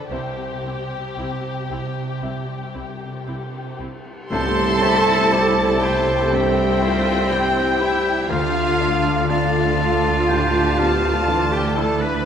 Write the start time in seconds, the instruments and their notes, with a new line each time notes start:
Already playing: cello section D3, harp C4 F4 A4 F5 A5, violin section A4 B4, grand piano A4 C5 D5 F5
0.11 grand piano C2 C5, double bass section C2, harp C3, cello section C3, viola section C4 E4, violin section G4
0.36 harp C4
0.63 double bass section C2, viola section C4 E4
0.89 harp C5
1.16 double bass section C2, grand piano C4, viola section C4 E4, harp G5
1.43 harp C5
1.69 double bass section C2, viola section C4 E4, harp G4
1.96 harp C4
2.21 double bass section C2, harp G3, viola section C4 E4, grand piano G4 E5
2.48 harp C4
2.74 double bass section C2, viola section C4 E4
3.00 harp C5
3.27 double bass section C2, viola section C4 E4, harp G5
3.53 harp C5
3.79 double bass section C2, viola section C4 E4, harp G4
4.05 harp C4
4.30 double bass section C2, cello section C2, grand piano C2, harp C3, french horn section G3 G4, viola section E4 G4, clarinet A4, cello A4, oboe C5, violin section A5 C6, tam-tam
4.81 grand piano E4 G4 C5, harp C5, oboe E5
5.31 grand piano E4 G4 C5, viola section A4, oboe D5, harp G5, violin section A5
5.81 grand piano E4 G4 C5, harp G4, cello G4, clarinet G4, oboe C5, violin section G5
6.31 grand piano G2, harp G3, cello C4, clarinet C4, viola section G4, violin section C5 G5, oboe E5
6.80 grand piano E4 G4 C5, viola section F4, harp C5
7.30 grand piano E4 G4 C5, viola section E4 G4, harp G5, oboe G5
7.78 cello E4, grand piano E4 G4 C5, clarinet E4, harp G4, violin section E5
8.28 grand piano D2, double bass section D2, cello section D2, harp D3, french horn section D3 A4, viola section D4 F4, cello F4, clarinet F4, violin section F5, oboe F5
8.55 harp D4
8.79 grand piano D4 F4 A4, harp A4
9.04 harp D5
9.29 grand piano D4 F4 A4, cello F4, clarinet F4, viola section A4, violin section F5, oboe A5
9.55 harp D5
9.80 grand piano D4 F4 A4
10.04 harp D4
10.28 grand piano A2, harp A3, viola section D4 G4, oboe G5, violin section A5
10.53 harp D4
10.78 viola section B3, grand piano D4 F4 A4, harp A4, oboe F5
11.03 harp D5
11.27 grand piano E3 D4 A4, viola section A3 D4
11.52 clarinet G4, cello G4, harp D5, violin section G5
11.76 grand piano D4 E4 A4, clarinet A4, cello A4, violin section A5
12.00 harp D4, clarinet B4, cello B4, violin section B5